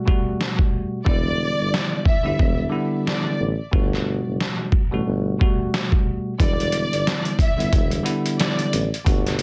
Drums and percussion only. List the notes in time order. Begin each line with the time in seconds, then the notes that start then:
0.08 kick
0.41 snare
0.59 kick
1.06 kick
1.74 snare
2.05 kick
2.39 kick
3.07 snare
3.73 kick
3.93 snare
4.41 snare
4.72 kick
5.41 kick
5.74 snare
5.92 kick
6.40 kick, closed hi-hat
6.60 closed hi-hat
6.72 closed hi-hat
6.93 closed hi-hat
7.07 snare, closed hi-hat
7.25 closed hi-hat
7.39 kick, closed hi-hat
7.60 closed hi-hat
7.73 kick, closed hi-hat
7.91 closed hi-hat
8.06 closed hi-hat
8.26 closed hi-hat
8.40 snare, closed hi-hat
8.59 closed hi-hat
8.73 closed hi-hat
8.94 closed hi-hat
9.06 kick, closed hi-hat
9.27 snare, closed hi-hat
9.39 closed hi-hat